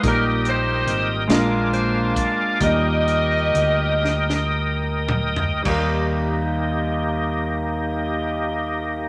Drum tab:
CC |------------|------------|x-----------|
HH |x-x-x-x-x-x-|x-x-x-------|------------|
SD |------o-----|------oo----|------------|
T2 |------------|----------o-|------------|
FT |------------|-----------o|------------|
BD |o---------o-|o-----------|o-----------|